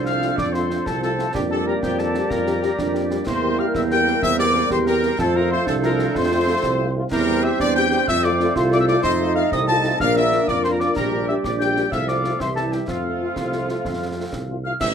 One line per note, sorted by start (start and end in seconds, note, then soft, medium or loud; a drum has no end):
0.00 0.30 C2 medium
0.00 1.30 F3 medium
0.00 1.31 C4 medium
0.00 0.87 D4 medium
0.00 1.30 A4 medium
0.00 1.30 C5 medium
0.05 0.11 A3 soft
0.05 0.11 C4 medium
0.05 0.12 F4 medium
0.05 0.35 F5 medium
0.05 0.35 F6 medium
0.05 snare medium
0.22 0.28 A3 medium
0.22 0.28 C4 medium
0.22 0.28 F4 medium
0.22 snare medium
0.37 0.78 F2 medium
0.37 0.53 D5 medium
0.37 0.44 D6 medium
0.37 concert bass drum medium
0.37 snare medium
0.53 0.60 A3 soft
0.53 0.60 C4 medium
0.53 0.60 F4 soft
0.53 0.85 C5 medium
0.53 0.87 C6 medium
0.53 snare soft
0.70 0.76 A3 medium
0.70 0.76 C4 medium
0.70 0.76 F4 soft
0.70 snare medium
0.86 1.26 C2 medium
0.86 1.33 C4 medium
0.86 1.01 A4 medium
0.86 1.01 A5 medium
0.86 concert bass drum medium
0.86 snare medium
1.02 1.08 A3 soft
1.02 1.08 C4 soft
1.02 1.08 F4 medium
1.02 1.32 A4 medium
1.02 1.36 A5 medium
1.02 snare soft
1.18 1.24 A3 medium
1.18 1.24 C4 soft
1.18 1.24 F4 medium
1.18 snare medium
1.34 1.74 F2 medium
1.34 3.25 G3 medium
1.34 3.22 A#3 medium
1.34 1.79 D4 medium
1.34 1.41 G4 medium
1.34 3.27 G4 medium
1.34 3.23 D5 medium
1.34 1.50 G5 medium
1.34 concert bass drum medium
1.34 snare medium
1.50 1.56 G3 soft
1.50 1.56 D4 medium
1.50 1.56 G4 soft
1.50 1.65 A4 medium
1.50 1.56 A5 medium
1.66 1.72 G3 medium
1.66 1.72 D4 medium
1.66 1.72 G4 medium
1.66 1.73 A#4 medium
1.66 1.81 A#5 medium
1.82 2.22 F2 medium
1.82 2.27 C4 medium
1.82 1.97 G4 medium
1.82 2.00 G5 medium
1.82 concert bass drum medium
1.82 snare medium
1.98 2.04 G3 medium
1.98 2.04 D4 soft
1.98 2.04 G4 soft
1.98 2.30 A4 medium
1.98 2.32 A5 medium
1.98 snare soft
2.14 2.20 G3 medium
2.14 2.20 D4 medium
2.14 2.20 G4 medium
2.14 snare medium
2.29 2.70 F2 medium
2.29 2.75 A#3 medium
2.29 3.07 A#4 medium
2.29 3.04 A#5 medium
2.29 concert bass drum medium
2.29 snare medium
2.46 2.52 G3 medium
2.46 2.52 D4 medium
2.46 2.52 G4 soft
2.46 snare medium
2.62 2.68 G3 medium
2.62 2.68 D4 medium
2.62 2.68 G4 medium
2.62 snare soft
2.78 3.19 F2 medium
2.78 3.23 D4 medium
2.78 concert bass drum medium
2.78 snare medium
2.94 3.00 G3 medium
2.94 3.00 D4 soft
2.94 3.00 G4 soft
2.94 snare soft
3.09 3.15 G3 medium
3.09 3.15 D4 medium
3.09 3.16 G4 medium
3.09 snare medium
3.26 3.63 E2 medium
3.26 5.15 G3 medium
3.26 5.15 A#3 medium
3.26 4.19 E4 medium
3.26 5.19 A#4 medium
3.26 5.18 C5 medium
3.26 3.57 C5 medium
3.26 3.60 C6 medium
3.26 concert bass drum medium
3.26 snare medium
3.26 crash soft
3.42 3.48 A#3 medium
3.42 3.48 C4 medium
3.42 3.48 G4 medium
3.58 3.64 A#3 medium
3.58 3.64 C4 medium
3.58 3.64 G4 medium
3.58 3.66 F5 medium
3.58 3.75 F6 medium
3.75 4.15 E2 medium
3.75 3.83 E5 medium
3.75 3.81 E6 medium
3.75 concert bass drum medium
3.75 snare medium
3.90 3.96 A#3 medium
3.90 3.96 C4 soft
3.90 3.96 G4 medium
3.90 4.21 G5 medium
3.90 4.21 G6 medium
3.90 snare soft
4.06 4.12 A#3 medium
4.06 4.12 C4 medium
4.06 4.12 G4 medium
4.06 snare soft
4.22 4.63 E2 medium
4.22 4.67 C4 medium
4.22 4.38 E5 loud
4.22 4.38 E6 medium
4.22 concert bass drum medium
4.22 snare medium
4.38 4.44 A#3 medium
4.38 4.44 C4 medium
4.38 4.44 G4 medium
4.38 4.69 D5 loud
4.38 4.69 D6 medium
4.38 snare medium
4.54 4.60 A#3 medium
4.54 4.60 C4 medium
4.54 4.60 G4 medium
4.54 snare medium
4.70 5.11 E2 medium
4.70 5.15 G4 medium
4.70 4.78 C5 medium
4.70 4.86 C6 medium
4.70 concert bass drum medium
4.70 snare medium
4.85 4.92 A#3 medium
4.85 4.92 C4 medium
4.85 4.92 G4 medium
4.85 5.17 A#4 medium
4.85 5.21 A#5 medium
4.85 snare medium
5.02 5.08 A#3 medium
5.02 5.08 C4 medium
5.02 5.08 G4 medium
5.02 snare medium
5.19 5.59 F2 medium
5.19 6.94 F3 medium
5.19 6.94 A3 medium
5.19 5.68 F4 medium
5.19 5.35 A4 medium
5.19 6.94 A4 medium
5.19 6.94 C5 medium
5.19 5.34 A5 medium
5.19 concert bass drum medium
5.19 snare medium
5.34 5.40 A3 medium
5.34 5.40 C4 medium
5.34 5.40 F4 medium
5.34 5.51 A#4 medium
5.34 5.52 A#5 medium
5.51 5.57 A3 medium
5.51 5.57 C4 medium
5.51 5.57 F4 medium
5.51 5.66 C5 medium
5.51 5.67 C6 medium
5.66 6.07 C2 medium
5.66 6.35 D4 medium
5.66 5.74 A4 medium
5.66 5.73 A5 medium
5.66 concert bass drum medium
5.66 snare medium
5.83 5.89 A3 medium
5.83 5.89 C4 medium
5.83 5.89 F4 medium
5.83 6.13 A#4 medium
5.83 6.13 A#5 medium
5.83 snare medium
5.99 6.05 A3 medium
5.99 6.05 C4 medium
5.99 6.05 F4 medium
5.99 snare medium
6.15 6.55 F2 medium
6.15 6.95 C5 loud
6.15 6.80 C6 medium
6.15 concert bass drum medium
6.15 snare medium
6.31 6.37 A3 medium
6.31 6.37 C4 medium
6.31 6.37 F4 medium
6.47 6.53 A3 medium
6.47 6.53 C4 medium
6.47 6.53 F4 medium
6.63 7.03 C2 medium
6.63 7.08 C4 medium
6.63 concert bass drum medium
6.63 snare medium
6.79 6.85 A3 medium
6.79 6.85 C4 medium
6.79 6.85 F4 medium
6.95 7.01 A3 medium
6.95 7.01 C4 medium
6.95 7.01 F4 medium
7.11 7.51 E2 medium
7.11 8.03 G3 medium
7.11 8.99 C4 medium
7.11 7.56 E4 medium
7.11 8.07 G4 medium
7.11 7.41 A#4 loud
7.11 9.00 C5 medium
7.11 7.45 A#5 medium
7.11 concert bass drum medium
7.11 snare medium
7.11 crash soft
7.27 7.33 G3 medium
7.27 7.33 C4 medium
7.27 7.33 G4 medium
7.43 7.49 G3 medium
7.43 7.49 C4 medium
7.43 7.49 G4 medium
7.43 7.59 E5 medium
7.43 7.60 E6 medium
7.60 8.00 E2 medium
7.60 8.09 D4 medium
7.60 7.74 D5 loud
7.60 7.66 D6 medium
7.60 concert bass drum medium
7.60 snare medium
7.75 7.81 G3 medium
7.75 7.81 C4 medium
7.75 7.81 G4 medium
7.75 8.05 G5 loud
7.75 8.09 G6 medium
7.75 snare soft
7.92 7.97 G3 medium
7.92 7.98 C4 medium
7.92 7.97 G4 medium
7.92 snare soft
8.07 8.48 F2 medium
8.07 10.00 A3 medium
8.07 8.56 C4 medium
8.07 9.96 A4 medium
8.07 8.22 E5 loud
8.07 8.23 E6 medium
8.07 concert bass drum medium
8.07 snare medium
8.23 8.29 A3 medium
8.23 8.29 C4 medium
8.23 8.29 F4 medium
8.23 8.55 D5 medium
8.23 8.53 D6 medium
8.23 snare medium
8.40 8.46 A3 medium
8.40 8.46 C4 medium
8.40 8.46 F4 medium
8.40 snare soft
8.55 8.96 C2 medium
8.55 9.01 F4 medium
8.55 8.71 C5 medium
8.55 8.62 C6 medium
8.55 concert bass drum medium
8.55 snare medium
8.72 8.78 A3 medium
8.72 8.78 C4 medium
8.72 8.78 F4 medium
8.72 8.79 D5 medium
8.72 8.79 D6 medium
8.72 snare medium
8.79 8.83 E5 medium
8.79 8.87 E6 medium
8.87 8.94 A3 medium
8.87 8.94 C4 medium
8.87 8.94 F4 medium
8.87 9.02 D5 medium
8.87 9.06 D6 medium
8.87 snare medium
9.03 9.44 F2 medium
9.03 9.48 D#4 medium
9.03 9.96 D#4 medium
9.03 9.33 C5 loud
9.03 10.00 D#5 medium
9.03 9.36 C6 medium
9.03 concert bass drum medium
9.03 snare medium
9.21 9.26 A3 medium
9.21 9.26 D#4 medium
9.21 9.26 F4 medium
9.35 9.42 A3 medium
9.35 9.42 D#4 medium
9.35 9.41 F4 medium
9.35 9.50 F5 medium
9.35 9.42 F6 medium
9.51 9.92 C2 medium
9.51 9.97 C4 medium
9.51 9.59 D#5 medium
9.51 9.67 D#6 medium
9.51 concert bass drum medium
9.51 snare medium
9.67 9.74 A3 medium
9.67 9.74 D#4 medium
9.67 9.74 F4 medium
9.67 9.97 A5 loud
9.67 9.98 A6 medium
9.67 snare soft
9.84 9.90 A3 medium
9.84 9.90 D#4 medium
9.84 9.90 F4 medium
9.84 snare medium
10.00 10.40 A#1 medium
10.00 10.92 A#3 medium
10.00 10.50 D4 medium
10.00 11.92 D4 medium
10.00 10.92 A#4 medium
10.00 11.89 D5 medium
10.00 10.15 F5 loud
10.00 10.17 F6 medium
10.00 concert bass drum medium
10.00 snare medium
10.16 10.22 A#3 medium
10.16 10.21 D4 soft
10.16 10.21 F4 medium
10.16 10.46 E5 medium
10.16 10.49 E6 medium
10.16 snare medium
10.32 10.38 A#3 medium
10.32 10.38 D4 medium
10.32 10.38 F4 medium
10.32 snare medium
10.48 10.88 F2 medium
10.48 10.98 F4 medium
10.48 10.63 D5 medium
10.48 10.65 D6 medium
10.48 concert bass drum medium
10.48 snare medium
10.63 10.70 A#3 medium
10.63 10.70 D4 medium
10.63 10.70 F4 medium
10.63 10.68 C5 medium
10.63 10.73 C6 medium
10.63 snare medium
10.72 10.80 A#4 medium
10.72 10.78 A#5 medium
10.79 10.86 A#3 medium
10.79 10.86 D4 medium
10.79 10.86 F4 medium
10.79 10.96 D5 medium
10.79 10.94 D6 medium
10.79 snare soft
10.96 11.32 A#1 medium
10.96 11.88 G3 medium
10.96 11.91 D4 medium
10.96 11.92 G4 medium
10.96 11.26 A#4 medium
10.96 11.26 A#5 medium
10.96 concert bass drum medium
10.96 snare medium
10.96 crash soft
11.12 11.18 A#3 medium
11.12 11.18 D4 medium
11.12 11.18 G4 medium
11.28 11.34 A#3 medium
11.28 11.34 D4 medium
11.28 11.34 G4 medium
11.28 11.35 E5 medium
11.28 11.34 E6 medium
11.44 11.84 A#1 medium
11.44 11.51 D5 medium
11.44 11.58 D6 medium
11.44 concert bass drum medium
11.44 snare medium
11.59 11.66 A#3 medium
11.59 11.66 D4 medium
11.59 11.66 G4 medium
11.59 11.90 G5 medium
11.59 11.89 G6 medium
11.59 snare medium
11.76 11.83 A#3 medium
11.76 11.83 D4 medium
11.76 11.83 G4 medium
11.76 snare soft
11.91 12.32 C2 medium
11.91 12.40 F3 medium
11.91 12.37 A3 medium
11.91 12.42 C4 medium
11.91 12.40 A4 medium
11.91 12.07 E5 medium
11.91 12.37 F5 medium
11.91 11.97 E6 medium
11.91 concert bass drum medium
11.91 snare medium
12.08 12.14 A3 soft
12.08 12.14 C4 soft
12.08 12.14 F4 soft
12.08 12.40 D5 medium
12.08 12.41 D6 medium
12.08 snare medium
12.23 12.30 A3 medium
12.23 12.29 C4 medium
12.23 12.30 F4 medium
12.23 snare medium
12.39 12.80 C2 medium
12.39 12.88 E3 medium
12.39 12.88 G3 medium
12.39 12.87 E4 medium
12.39 12.88 G4 medium
12.39 12.47 C5 medium
12.39 12.88 E5 medium
12.39 12.55 C6 medium
12.39 concert bass drum medium
12.39 snare medium
12.55 12.62 G3 soft
12.55 12.62 C4 soft
12.55 12.62 E4 soft
12.55 12.63 A4 medium
12.55 12.73 A5 medium
12.55 snare soft
12.72 12.78 G3 soft
12.72 12.78 C4 soft
12.72 12.78 E4 medium
12.72 12.79 G4 medium
12.72 12.87 G5 medium
12.72 snare medium
12.87 13.28 F2 medium
12.87 14.60 F3 medium
12.87 14.64 A3 medium
12.87 14.52 C4 medium
12.87 14.47 F4 medium
12.87 14.60 A4 medium
12.87 14.39 F5 medium
12.87 14.64 F5 medium
12.87 concert bass drum medium
12.87 snare medium
13.04 13.10 A3 soft
13.04 13.10 C4 soft
13.04 13.10 F4 soft
13.20 13.26 A3 medium
13.20 13.26 C4 soft
13.20 13.26 F4 medium
13.36 13.76 C2 medium
13.36 concert bass drum medium
13.36 snare medium
13.52 13.58 A3 soft
13.52 13.58 C4 soft
13.52 13.58 F4 soft
13.52 snare soft
13.68 13.74 A3 soft
13.68 13.74 C4 medium
13.68 13.74 F4 medium
13.68 snare soft
13.85 14.24 F2 medium
13.85 concert bass drum medium
13.85 snare medium
14.00 14.06 A3 soft
14.00 14.06 C4 soft
14.00 14.06 F4 soft
14.17 14.23 A3 medium
14.17 14.22 C4 medium
14.17 14.22 F4 medium
14.32 14.72 C2 medium
14.32 concert bass drum medium
14.32 snare medium
14.48 14.54 A3 soft
14.48 14.54 C4 soft
14.48 14.54 F4 soft
14.64 14.70 A3 soft
14.64 14.70 C4 medium
14.64 14.70 F4 soft
14.64 14.72 F5 medium
14.64 14.79 F6 medium
14.80 14.94 A1 medium
14.80 14.94 C5 medium
14.80 14.94 E5 loud
14.80 14.94 E5 medium
14.80 14.87 E6 medium
14.80 concert bass drum medium
14.80 snare medium
14.80 crash medium